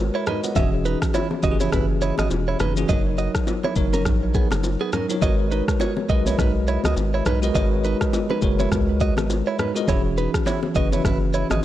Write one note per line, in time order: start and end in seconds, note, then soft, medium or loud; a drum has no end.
0.00 0.11 G#1 medium
0.00 0.58 G#3 medium
0.00 0.57 F#4 medium
0.00 0.16 A#4 medium
0.00 0.28 B4 medium
0.00 0.15 C#5 medium
0.15 0.24 E4 medium
0.15 0.27 A#4 medium
0.15 0.24 C#5 medium
0.15 0.27 C#5 medium
0.27 0.40 D#4 medium
0.27 0.40 B4 medium
0.27 0.43 B4 medium
0.27 0.43 D#5 medium
0.27 cross-stick medium
0.27 low conga medium
0.27 shaker medium
0.44 0.72 D#5 medium
0.44 0.72 F#5 medium
0.44 high bongo medium
0.44 shaker medium
0.55 0.96 E1 loud
0.55 1.37 E3 medium
0.55 1.37 C#4 medium
0.55 1.38 F#4 medium
0.55 0.69 G#4 medium
0.55 1.38 G#4 medium
0.55 0.69 E5 loud
0.55 kick loud
0.55 low conga medium
0.55 shaker medium
0.85 0.98 D#4 medium
0.85 0.98 B4 medium
0.85 shaker soft
1.02 kick medium
1.02 cross-stick loud
1.02 shaker medium
1.14 1.27 E4 medium
1.14 1.27 C#5 medium
1.14 high bongo medium
1.14 shaker medium
1.31 low bongo medium
1.42 1.69 F#1 loud
1.42 2.51 E3 medium
1.42 2.52 C#4 medium
1.42 2.52 F#4 medium
1.42 1.56 F#4 medium
1.42 1.52 G4 medium
1.42 1.56 D#5 medium
1.42 kick medium
1.42 shaker medium
1.51 2.56 G#4 medium
1.60 1.70 E4 medium
1.60 1.69 C#5 medium
1.60 low bongo medium
1.60 shaker medium
1.72 2.12 F#1 loud
1.72 1.85 E4 medium
1.72 1.85 B4 medium
1.72 kick medium
1.72 cross-stick medium
1.72 low conga medium
1.72 shaker medium
2.01 2.15 E4 medium
2.01 2.14 C#5 medium
2.01 shaker soft
2.18 2.29 G#1 medium
2.18 2.28 F#4 medium
2.18 2.28 D#5 medium
2.18 cross-stick loud
2.18 low bongo medium
2.18 shaker medium
2.31 2.56 E1 medium
2.31 high bongo medium
2.31 shaker medium
2.48 2.57 E4 medium
2.48 2.57 C#5 medium
2.60 2.85 F#1 medium
2.60 2.73 D#4 medium
2.60 2.72 B4 medium
2.60 cross-stick medium
2.60 low conga medium
2.60 shaker medium
2.76 2.88 E3 medium
2.76 2.88 C#4 medium
2.76 2.88 F#4 medium
2.76 2.89 G#4 medium
2.76 high bongo medium
2.76 shaker medium
2.88 3.29 F#1 loud
2.88 3.70 F#3 medium
2.88 3.70 D#4 medium
2.88 3.02 F#4 medium
2.88 3.71 A#4 medium
2.88 3.71 C#5 medium
2.88 3.01 D#5 loud
2.88 kick loud
2.88 low conga medium
2.88 shaker medium
3.18 3.31 F#4 medium
3.18 3.31 D#5 medium
3.18 shaker soft
3.35 kick medium
3.35 cross-stick medium
3.35 shaker medium
3.47 high bongo medium
3.47 shaker medium
3.64 3.74 E4 medium
3.64 3.73 C#5 medium
3.64 low bongo medium
3.75 4.07 F#1 medium
3.75 4.84 F#3 medium
3.75 4.85 D#4 medium
3.75 4.85 A#4 medium
3.75 4.85 C#5 medium
3.75 kick medium
3.75 shaker medium
3.93 4.03 C#4 medium
3.93 4.02 A#4 medium
3.93 low bongo medium
3.93 shaker medium
4.05 4.45 A#1 loud
4.05 kick medium
4.05 cross-stick medium
4.05 low conga medium
4.05 shaker medium
4.34 4.48 B3 medium
4.34 4.47 G#4 medium
4.34 kick medium
4.34 shaker soft
4.51 4.77 F#1 medium
4.51 cross-stick loud
4.51 low bongo medium
4.51 shaker medium
4.63 high bongo medium
4.63 shaker medium
4.81 4.90 B3 medium
4.81 4.90 G#4 medium
4.93 5.06 C#4 medium
4.93 5.05 A#4 medium
4.93 cross-stick medium
4.93 low conga medium
4.93 shaker medium
5.09 5.20 F#3 medium
5.09 5.21 D#4 medium
5.09 5.21 A#4 medium
5.09 5.22 C#5 medium
5.09 high bongo medium
5.09 shaker medium
5.21 5.62 G#1 loud
5.21 6.03 G#3 medium
5.21 6.03 F#4 medium
5.21 5.35 F#4 medium
5.21 6.03 A#4 medium
5.21 6.04 B4 medium
5.21 6.04 C#5 medium
5.21 5.35 D#5 loud
5.21 kick loud
5.21 low conga medium
5.21 shaker medium
5.51 5.64 D#4 medium
5.51 5.64 B4 medium
5.51 shaker soft
5.68 kick medium
5.68 cross-stick loud
5.68 shaker medium
5.80 5.93 F#4 medium
5.80 5.93 C#5 medium
5.80 high bongo medium
5.80 shaker medium
5.97 low bongo medium
6.09 6.35 B1 medium
6.09 7.17 G#3 medium
6.09 7.18 F#4 medium
6.09 6.23 F#4 medium
6.09 7.18 A#4 medium
6.09 7.18 B4 medium
6.09 6.22 D#5 medium
6.09 7.19 D#5 medium
6.09 kick medium
6.09 shaker medium
6.26 6.36 E4 medium
6.26 6.36 C#5 medium
6.26 low bongo medium
6.26 shaker medium
6.38 6.78 B1 medium
6.38 6.52 D#4 medium
6.38 6.51 B4 medium
6.38 kick medium
6.38 cross-stick medium
6.38 low conga medium
6.38 shaker medium
6.68 6.81 E4 medium
6.68 6.80 C#5 medium
6.68 shaker soft
6.84 6.95 C#2 medium
6.84 6.94 F#4 medium
6.84 6.94 D#5 medium
6.84 cross-stick loud
6.84 low bongo medium
6.84 shaker medium
6.96 7.22 G#1 loud
6.96 high bongo medium
6.96 shaker medium
7.14 7.23 E4 medium
7.14 7.23 C#5 medium
7.26 7.51 B1 medium
7.26 7.39 D#4 medium
7.26 7.39 B4 medium
7.26 cross-stick medium
7.26 low conga medium
7.26 shaker medium
7.42 7.53 G#3 medium
7.42 7.53 F#4 medium
7.42 7.54 A#4 medium
7.42 7.54 B4 medium
7.42 7.55 D#5 medium
7.42 high bongo medium
7.42 shaker medium
7.54 7.95 G#1 loud
7.54 8.36 G#3 medium
7.54 8.36 F#4 medium
7.54 7.68 F#4 medium
7.54 8.36 A#4 medium
7.54 8.37 B4 medium
7.54 8.37 C#5 medium
7.54 7.68 D#5 loud
7.54 kick loud
7.54 low conga medium
7.54 shaker medium
7.84 7.97 D#4 medium
7.84 7.97 B4 medium
7.84 shaker soft
8.01 kick medium
8.01 cross-stick loud
8.01 shaker medium
8.13 high bongo medium
8.13 shaker medium
8.30 8.40 D#4 medium
8.30 8.39 B4 medium
8.30 low bongo medium
8.41 8.68 F#1 loud
8.41 9.50 G#3 medium
8.41 9.51 F#4 medium
8.41 9.51 A#4 medium
8.41 9.51 B4 medium
8.41 9.51 C#5 medium
8.41 kick medium
8.41 shaker medium
8.59 8.69 E4 medium
8.59 8.69 C#5 medium
8.59 low bongo medium
8.59 shaker medium
8.72 9.11 C#2 medium
8.72 kick medium
8.72 cross-stick medium
8.72 low conga medium
8.72 shaker medium
9.00 9.14 F#4 medium
9.00 9.13 D#5 medium
9.00 kick medium
9.00 shaker soft
9.17 9.43 G#1 medium
9.17 cross-stick loud
9.17 low bongo medium
9.17 shaker medium
9.30 high bongo medium
9.30 shaker medium
9.47 9.56 E4 medium
9.47 9.56 C#5 medium
9.59 9.72 D#4 medium
9.59 9.72 B4 medium
9.59 cross-stick medium
9.59 low conga medium
9.59 shaker medium
9.75 9.87 G#3 medium
9.75 9.87 F#4 medium
9.75 9.87 A#4 medium
9.75 9.87 B4 medium
9.75 9.88 D#5 medium
9.75 high bongo medium
9.75 shaker medium
9.87 10.28 E1 loud
9.87 10.69 E3 medium
9.87 10.69 C#4 medium
9.87 10.01 E4 medium
9.87 10.69 F#4 medium
9.87 10.70 G#4 medium
9.87 10.01 C#5 loud
9.87 kick loud
9.87 low conga medium
9.87 shaker medium
10.18 10.30 D#4 medium
10.18 10.30 B4 medium
10.18 shaker soft
10.34 kick medium
10.34 cross-stick loud
10.34 shaker medium
10.46 10.59 E4 medium
10.46 10.59 C#5 medium
10.46 high bongo medium
10.46 shaker medium
10.63 low bongo medium
10.74 11.01 F#1 loud
10.74 11.65 E3 medium
10.74 11.65 C#4 medium
10.74 11.65 F#4 medium
10.74 10.89 F#4 medium
10.74 11.65 B4 medium
10.74 10.88 D#5 medium
10.74 kick medium
10.74 shaker medium
10.92 11.02 E4 medium
10.92 11.02 C#5 medium
10.92 low bongo medium
10.92 shaker medium
11.05 11.44 F#1 loud
11.05 11.18 E4 medium
11.05 11.17 B4 medium
11.05 kick medium
11.05 cross-stick medium
11.05 low conga medium
11.05 shaker medium
11.34 11.47 E4 medium
11.34 11.46 C#5 medium
11.34 shaker soft
11.50 11.61 G#1 medium
11.50 11.60 F#4 medium
11.50 11.60 D#5 medium
11.50 cross-stick loud
11.50 low bongo medium
11.50 shaker medium